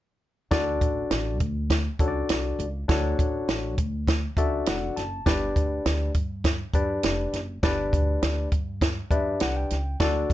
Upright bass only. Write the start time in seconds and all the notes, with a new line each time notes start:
0.52 D2
0.81 A1
1.11 A1
1.40 D2
1.99 C#2
2.30 C2
2.59 C#2
2.89 D2
3.19 A1
3.48 A1
3.78 D2
4.37 C#2
4.68 F1
4.97 F#1
5.26 G1
5.56 D2
5.86 D2
6.15 G2
6.74 F#2
7.04 F1
7.33 F#1
7.63 G1
7.93 D2
8.22 D2
8.52 G2
9.11 F#2
9.41 C2
9.71 C#2
10.00 D2
10.30 A1